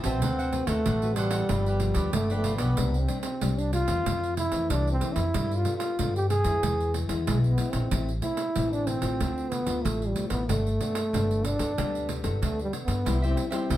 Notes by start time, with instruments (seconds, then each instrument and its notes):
Already playing: nylon-string guitar E3
0.04 upright bass A1, nylon-string guitar C4 F#4 B4, trombone C4, cavaquinho C5 E5 A5, pandeiro
0.21 upright bass D2, nylon-string guitar D3, cavaquinho D4 A4 C5 F#5, pandeiro
0.39 cavaquinho A4 C5 F#5, pandeiro
0.53 nylon-string guitar C4 F#4 B4, muted cavaquinho stroke, pandeiro
0.67 upright bass D2, trombone A3, cavaquinho A4 C5 F#5, pandeiro
0.85 upright bass A1, nylon-string guitar A2, cavaquinho D4 A4 C5 F#5, pandeiro
1.02 nylon-string guitar C4 F#4 B4, pandeiro
1.16 trombone G3, cavaquinho D4 A4 C5 F#5, pandeiro
1.31 cavaquinho A4 C5 F#5, pandeiro
1.49 upright bass G1, nylon-string guitar G2 F3 B3 D4, cavaquinho F4 G4 B4 D5, pandeiro
1.66 cavaquinho G4 B4 D5, pandeiro
1.80 nylon-string guitar F3 B3 D4, muted cavaquinho stroke, pandeiro
1.94 upright bass D2, cavaquinho G4 B4 D5, pandeiro
2.13 upright bass G1, nylon-string guitar D3, trombone A3, pandeiro
2.30 nylon-string guitar F3 B3 D4, cavaquinho G4 B4 D5, pandeiro
2.35 trombone A3
2.44 cavaquinho F4 G4 B4 D5, pandeiro
2.56 upright bass B1, trombone B3, cavaquinho B4 D5, pandeiro
2.60 cavaquinho G4
2.77 upright bass C2, nylon-string guitar C3 G3 C4 D4, pandeiro
2.94 pandeiro
3.00 trombone C4
3.08 nylon-string guitar G3 C4 D4, pandeiro
3.21 trombone C4, pandeiro
3.41 upright bass C2, nylon-string guitar G2 G3 C4 D4, pandeiro
3.58 trombone D4, pandeiro
3.73 trombone F4, pandeiro
3.88 upright bass E2, nylon-string guitar A3 C4, pandeiro
4.06 upright bass F2, nylon-string guitar F2, pandeiro
4.24 pandeiro
4.37 trombone E4, pandeiro
4.52 upright bass F2, nylon-string guitar E3 A3 C4, pandeiro
4.70 upright bass C2, nylon-string guitar C3, trombone D4, pandeiro
4.87 pandeiro
4.92 trombone C4
5.01 nylon-string guitar E3 A3 C4, pandeiro
5.13 upright bass F2, trombone E4, pandeiro
5.34 upright bass G2, nylon-string guitar G3 B3 D4 A4, pandeiro
5.51 pandeiro
5.56 trombone F4
5.65 nylon-string guitar B3 D4 A4, pandeiro
5.77 trombone F4, pandeiro
5.99 upright bass G2, nylon-string guitar D3 B3 D4 A4, pandeiro
6.16 trombone G4, pandeiro
6.29 trombone G#4, pandeiro
6.44 upright bass F2, nylon-string guitar G#3 B3 E4, pandeiro
6.63 upright bass E2, nylon-string guitar E3, pandeiro
6.80 pandeiro
6.94 pandeiro
7.09 upright bass E2, nylon-string guitar G#3 B3 E4, pandeiro
7.27 upright bass B1, nylon-string guitar B2, trombone G#3, pandeiro
7.44 pandeiro
7.49 trombone B3
7.58 nylon-string guitar G#3 B3 E4, pandeiro
7.70 upright bass A#1, trombone C4, pandeiro
7.91 upright bass A1, nylon-string guitar A2 A3 C4 E4, pandeiro
8.09 pandeiro
8.22 nylon-string guitar A3 C4 E4, trombone E4, pandeiro
8.37 pandeiro
8.56 upright bass A1, nylon-string guitar E3 A3 C4 E4, pandeiro
8.72 trombone D4, pandeiro
8.87 trombone C4, pandeiro
9.02 upright bass A1, nylon-string guitar A3 C4 F4, pandeiro
9.20 upright bass D2, nylon-string guitar D3, pandeiro
9.38 pandeiro
9.51 trombone B3, pandeiro
9.66 upright bass D2, nylon-string guitar A3 C4 F4, pandeiro
9.85 upright bass A1, nylon-string guitar A2, trombone A3, pandeiro
10.02 pandeiro
10.07 trombone G3
10.16 nylon-string guitar A3 C4 F4, pandeiro
10.29 upright bass A1, trombone B3, pandeiro
10.49 upright bass G1, nylon-string guitar G3 B3 D4 A4, trombone A3, pandeiro
10.67 pandeiro
10.81 nylon-string guitar B3 D4 A4, pandeiro
10.95 pandeiro
11.13 upright bass G1, nylon-string guitar D3 B3 D4 A4, pandeiro
11.31 pandeiro
11.44 trombone D4, pandeiro
11.59 upright bass D2, nylon-string guitar B3 D4 A4, pandeiro
11.78 upright bass D2, nylon-string guitar G3 B3 D4 A4, pandeiro
11.95 pandeiro
12.09 pandeiro
12.23 upright bass G1, nylon-string guitar B3 D4 A4, pandeiro
12.42 upright bass D2, nylon-string guitar D3, trombone A3, pandeiro
12.59 trombone G3, pandeiro
12.73 nylon-string guitar B3 D4 A4, pandeiro
12.84 upright bass G2, trombone B3, pandeiro
13.05 upright bass C2, nylon-string guitar C3 G3 C4 E4, cavaquinho E4 G4 C5 E5, pandeiro
13.22 nylon-string guitar G3 C4 E4, cavaquinho G4 C5 E5, pandeiro
13.27 trombone C4
13.36 muted cavaquinho stroke, pandeiro
13.49 nylon-string guitar G3 C4, trombone C4, cavaquinho G4 C5 E5, pandeiro
13.53 nylon-string guitar E4
13.70 upright bass C2, nylon-string guitar G2, cavaquinho E4 G4 C5 E5, pandeiro